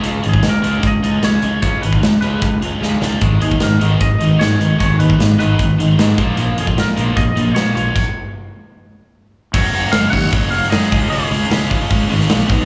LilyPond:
<<
  \new Staff \with { instrumentName = "Clean electric guitar" } { \time 4/4 \key des \mixolydian \tempo 4 = 152 r8 aes'8 bes'4 ees''4 des''4 | des''8 ces''4 ces''4 r4. | r8 aes'8 bes'4 ees''4 des''4 | des''8 ces''4 ces''4 r4. |
r8 aes'8 bes'4 ees''4 des''8 des''8~ | des''4 r2. | des''4 f''8 ges''4 f''8 ees''4 | des''2 r2 | }
  \new Staff \with { instrumentName = "Muted trumpet" } { \time 4/4 \key des \mixolydian r1 | r1 | r1 | r1 |
r1 | r1 | bes'4 des''8 des''4 des''8 aes'4 | aes'2 r2 | }
  \new Staff \with { instrumentName = "Overdriven electric guitar" } { \clef bass \time 4/4 \key des \mixolydian <aes des' f' aes'>8 <aes des' f' aes'>8 r8 <aes des' f' aes'>8 r8 <aes des' f' aes'>8 r8 <aes des' f' aes'>8 | r8 <aes des' f' aes'>8 r8 <aes des' f' aes'>8 r8 <aes des' f' aes'>8 r8 <aes des' f' aes'>8 | r8 <ees aes ces' ees'>8 r8 <ees aes ces' ees'>8 r8 <ees aes ces' ees'>8 r8 <ees aes ces' ees'>8 | r8 <ees aes ces' ees'>8 r8 <ees aes ces' ees'>8 r8 <ees aes ces' ees'>8 r8 <f bes des' f'>8 |
r8 <f bes des' f'>8 r8 <f bes des' f'>8 r8 <f bes des' f'>8 r8 <f bes des' f'>8 | r1 | <ges, des ges>8 <ges, des ges>8 <ges, des ges>8 <ges, des ges>8 <ges, des ges>8 <ges, des ges>8 <ges, des ges>8 <des aes des'>8 | <des aes des'>8 <des aes des'>8 <des aes des'>8 <des aes des'>8 <des aes des'>8 <des aes des'>8 <des aes des'>8 <b, fis b>8 | }
  \new Staff \with { instrumentName = "Overdriven electric guitar" } { \clef bass \time 4/4 \key des \mixolydian <des aes des'>8 <des aes>8 <des aes>8 <des aes des'>8 <des aes>8 <des aes>8 <des aes des'>8 <des aes>8 | <des aes des'>8 <des aes>8 <des aes>8 <des aes des'>8 <des aes>8 <des aes>8 <des aes des'>8 <des aes>8 | <aes, ees aes>8 <aes, ees>8 <aes, ees>8 <aes, ees aes>8 <aes, ees>8 <aes, ees>8 <aes, ees aes>8 <aes, ees>8 | <aes, ees aes>8 <aes, ees>8 <aes, ees>8 <aes, ees aes>8 <aes, ees>8 <aes, ees>8 <aes, ees aes>8 <bes, f bes>8 |
<bes, f bes>8 <bes, f>8 <bes, f>8 <bes, f bes>8 <bes, f>8 <bes, f>8 <bes, f bes>8 <bes, f>8 | r1 | <ges, des ges>8 <ges, des ges>8 <ges, des ges>8 <ges, des ges>8 <ges, des ges>8 <ges, des ges>8 <ges, des ges>8 <des aes des'>8 | <des aes des'>8 <des aes des'>8 <des aes des'>8 <des aes des'>8 <des aes des'>8 <des aes des'>8 <des aes des'>8 <b, fis b>8 | }
  \new Staff \with { instrumentName = "Fingered electric bass" } { \clef bass \time 4/4 \key des \mixolydian des,8 aes,,8 des,8 des,8 des,8 des,8 des,8 des,8 | des,8 aes,,8 des,8 des,8 des,8 des,8 des,8 des,8 | aes,,8 ees,8 aes,8 aes,,8 aes,,8 aes,,8 aes,8 aes,,8 | aes,,8 ees,8 aes,8 aes,,8 aes,,8 aes,,8 aes,8 bes,,8 |
bes,,8 f,8 bes,8 bes,,8 bes,,8 bes,,8 bes,8 bes,,8 | r1 | ges,,8 ges,,8 ges,,8 ees,8 ges,,4 ges,8 des,8 | des,8 des,8 des,4 des,8 aes,,8 bes,,8 b,,8 | }
  \new DrumStaff \with { instrumentName = "Drums" } \drummode { \time 4/4 hh8 hh16 bd16 <hh sn>8 hh8 <hh bd>8 hh8 <hh sn>8 hh8 | <hh bd>8 hh16 bd16 <hh sn>8 hh8 <hh bd>8 hh8 sn8 sn8 | <hh bd>8 hh16 bd16 <hh sn>8 hh8 <hh bd>8 hh8 <hh sn>8 hh8 | <hh bd>8 hh16 bd16 <hh sn>8 hh8 <hh bd>8 hh8 <hh sn>8 <hh bd>8 |
hh8 hh16 bd16 <hh sn>8 hh8 <hh bd>8 hh8 <hh sn>8 hh8 | <cymc bd>4 r4 r4 r4 | <cymc bd>8 hho8 <hho sn>8 <hho bd>8 <hho bd>8 hho16 sn16 <hho sn>16 sn16 <hho bd>8 | hho8 hho8 <hho sn>8 <hho bd>8 <hho bd>8 hho16 sn16 <hho sn>16 sn16 <hho bd>8 | }
>>